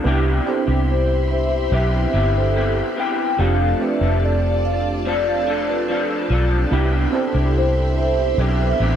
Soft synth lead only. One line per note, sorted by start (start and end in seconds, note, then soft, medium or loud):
0.91 1.29 C5 medium
1.33 1.75 C5 medium
1.74 3.01 E5 loud
3.00 3.42 G5 medium
3.41 3.84 F5 loud
3.82 4.26 E5 medium
4.25 6.32 D5 loud
7.58 7.95 C5 loud
7.98 8.42 C5 loud
8.40 8.96 E5 loud